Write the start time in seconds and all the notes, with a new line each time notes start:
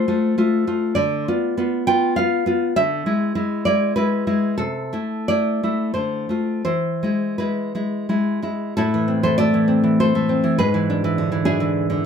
Already playing: C5
0.08 A3 F4
0.38 A3 F4
0.67 A3 F4
0.95 D3 D5
1.28 B3 F4
1.57 B3 F4
1.87 B3 F4 G5
2.16 B3 F4 F5
2.46 B3 F4
2.76 D3 E5
3.06 G#3 E4
3.35 G#3 E4
3.65 G#3 E4 D5
3.96 G#3 E4 B4
4.27 G#3 E4
4.58 C3 A4
4.93 A3 E4
5.28 A3 E4 D5
5.63 A3 E4
5.94 D3 C5
6.29 A3 F4
6.65 E3 C5
7.03 G#3 E4
7.38 G#3 E4 B4
7.75 G#3 E4
8.09 G#3 E4
8.42 G#3 E4
8.77 A2 E4 A4
8.94 E3
9.08 C4
9.23 E3 A4 C5
9.38 A3 A4 D5
9.54 E3
9.68 C4
9.84 E3
10.00 A4 C5
10.15 A3
10.29 C4
10.44 E3
10.59 G#2 G#4 B4
10.74 E3
10.90 D4
11.04 E3
11.18 D3
11.32 E3
11.45 D4 E4 G#4
11.60 E3
11.90 D3